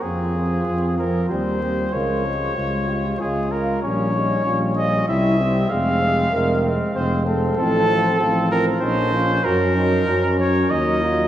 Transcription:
X:1
M:3/4
L:1/8
Q:1/4=96
K:Fm
V:1 name="Cornet"
A3 B c2 | d4 A B | d3 e =e2 | f3 z c z |
[K:Gblyd] =A3 B c2 | B3 d e2 |]
V:2 name="French horn"
F4 G2 | B A F G F2 | D E F2 =E G | A2 B z A =A- |
[K:Gblyd] =A2 F2 E F | G E D2 E F |]
V:3 name="Trumpet"
C C C C C C | F F F F F F | D D D D C C | C C C C C C |
[K:Gblyd] C C C C D D | D D D D E E |]
V:4 name="Trombone" clef=bass
F, F, F, F, G, G, | A, A, A, A, A, A, | G, G, G, G, G, G, | A, A, A, A, A, A, |
[K:Gblyd] F, F, F, F, F, F, | G, G, G, G, G, G, |]
V:5 name="Tuba" clef=bass
F,,2 F,,2 E,,2 | D,,2 D,,2 D,,2 | B,,,2 B,,,2 C,,2 | F,,,2 F,,,2 F,,,2 |
[K:Gblyd] =A,,,2 A,,,2 B,,,2 | G,,2 G,,2 E,,2 |]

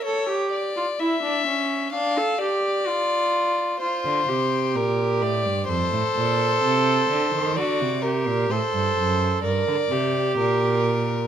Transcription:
X:1
M:4/4
L:1/16
Q:1/4=64
K:Gm
V:1 name="Violin"
^c2 d2 =e4 f2 d6 | c4 B2 d2 c8 | d2 B2 c4 d4 B4 |]
V:2 name="Viola"
A G2 F =E D ^C2 D A G2 F4 | F2 G6 A8 | ^F2 G2 A4 B2 G6 |]
V:3 name="Cello" clef=bass
z16 | z D, C,2 B,,2 A,, G,, F,, A,, B,,2 C,2 D, E, | D, C,2 B,, A,, G,, ^F,,2 G,, D, C,2 B,,4 |]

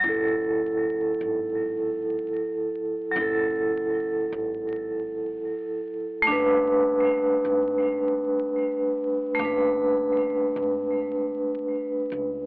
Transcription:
X:1
M:4/4
L:1/8
Q:"Swing 16ths" 1/4=77
K:F#m
V:1 name="Vibraphone"
[F,EA]8 | [F,EA]8 | [A,DB]8 | [A,DB]8 |]
V:2 name="Upright bass" clef=bass
F,,,3 G,,,3 z2 | F,,,3 G,,,3 z2 | F,,,3 G,,,3 z2 | F,,,3 G,,,3 z C,, |]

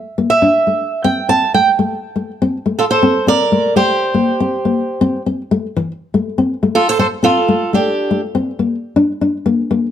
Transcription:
X:1
M:4/4
L:1/16
Q:"Swing 16ths" 1/4=121
K:F
V:1 name="Steel-string acoustic guitar"
z2 e6 g2 a2 g2 z2 | z6 [FA] [Ac]3 [Bd]4 [Gc]2- | [Gc]8- [Gc]2 z6 | z6 [FA] [Ac] [Ac]2 [FA]4 [DG]2- |
[DG]2 z12 z2 |]
V:2 name="Nylon-string guitar"
z B,2 D2 A,2 z C2 C2 A,2 A,2 | z A,2 C2 A,2 z C2 C2 A,2 A,2 | z B,2 C2 B,2 z C2 C2 A,2 E,2 | z A,2 C2 A,2 z3 C2 A,2 A,2 |
z A,2 C2 B,2 z D2 D2 B,2 B,2 |]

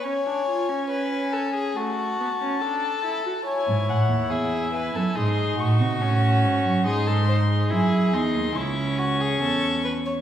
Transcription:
X:1
M:4/4
L:1/16
Q:1/4=70
K:C#phr
V:1 name="Violin"
g8 a8 | g2 f2 e2 g2 ^b2 c'6 | ^b4 g2 b2 c'8 |]
V:2 name="Violin"
c4 B2 A G F4 A4 | c4 G2 B A G2 F6 | G A ^B G4- G E2 F G A2 =B c |]
V:3 name="Viola"
C D ^E C4- C A,2 B, C D2 =E F | E8 ^D4 C4 | ^D4 E2 D2 C8 |]
V:4 name="Cello" clef=bass
z16 | z G,, A,, ^D,, E,,3 F,, G,,2 A,, ^B,, A,,2 G,, F,, | G,,4 F,,2 E,, ^D,, C,,4 E,,4 |]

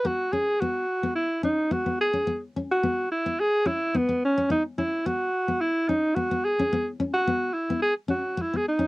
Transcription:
X:1
M:4/4
L:1/16
Q:"Swing 16ths" 1/4=108
K:Bmix
V:1 name="Alto saxophone"
F2 G2 F4 E2 D2 F2 G2- | G z2 F3 E2 G2 E2 B,2 C2 | D2 E2 F4 E2 D2 F2 G2- | G z2 F3 E2 G2 F2 E G D2 |]
V:2 name="Nylon-string guitar"
B,2 C2 B,2 z B,2 z C2 B, B,2 C | B,2 C2 B,2 z B,2 z C2 B, B,2 C | B,2 C2 B,2 z B,2 z C2 B, B,2 C | B,2 C2 B,2 z B,2 z C2 z B,2 C |]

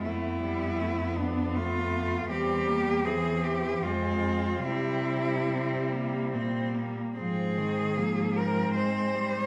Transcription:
X:1
M:3/4
L:1/16
Q:1/4=77
K:Cphr
V:1 name="Cello"
=E6 =D2 F4 | G4 A2 G2 F4 | =E8 z4 | A6 B2 c4 |]
V:2 name="Cello"
=B,12 | C2 B,2 C4 C4 | C4 C2 B,2 C2 B,2 | C4 B,2 C6 |]
V:3 name="Cello" clef=bass
=A,2 G,2 A,2 =B,2 A,4 | G,4 =E,4 A,4 | G,8- G,3 z | F,2 E,2 F,4 A,2 G,2 |]
V:4 name="Cello" clef=bass
F,,12 | =E,,8 F,,4 | C,8 B,,3 z | A,,12 |]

